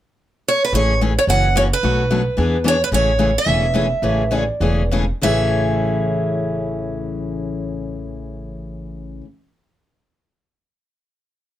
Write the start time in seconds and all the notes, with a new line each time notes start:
0.48 C#5
0.65 B4
0.72 A1 C#3 E3 A3 C#4 G#4 C#5
1.01 C#3 E3 A3 C#4 G#4
1.19 C#5
1.27 F#1 C#3 E3 A#3 C#4 F#4 F#5
1.56 C#3 E3 A#3 C#4 F#4 C#5
1.73 B4
1.83 B1 B2 F#3 A3 D4 F#4
2.10 B2 F#3 A3 D4 F#4
2.37 E2 E3 B3 D4 G#4
2.64 E3 B3 D4 G#4 C#5
2.84 B4
2.92 A1 C#3 E3 A3 C#4 G#4 C#5
3.19 C#3 E3 A3 C#4 G#4
3.38 E5
3.46 E1 C#3 E3 A3 C#4 G#4
3.74 C#3 E3 A3 C#4 G#4
4.02 A1 C#3 E3 A3 C#4 G#4
4.31 C#3 E3 A3 C#4 G#4
4.38 D5
4.60 E1 C#3 E3 A3 C#4 G#4
4.91 C#3 E3 A3 C#4 G#4
5.22 A1 A2 C#3 E3 A3 C#4 G#4 E5